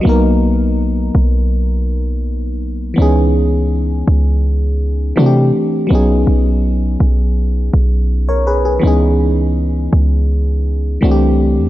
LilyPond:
<<
  \new Staff \with { instrumentName = "FM electric piano" } { \time 4/4 \key b \major \tempo 4 = 82 << { r1 | r1 | r2. r16 <ais' cis''>16 <gis' b'>16 gis'16~ | gis'16 r2. r8. | } \\ { <fis ais b dis' ais'>1 | <e b cis' dis' gis'>2. <e a c' d' fis' g'>4 | <fis b cis' dis' gis'>1 | <e b cis' dis' gis'>2. <e a c' d' fis' g'>4 | } >> }
  \new Staff \with { instrumentName = "808-style bass" } { \clef bass \time 4/4 \key b \major b,,4. b,,2~ b,,8 | cis,4. cis,4. c8 r8 | b,,8 b,,4 b,,4 b,,4. | cis,4. cis,4. c,8. e,16 | }
>>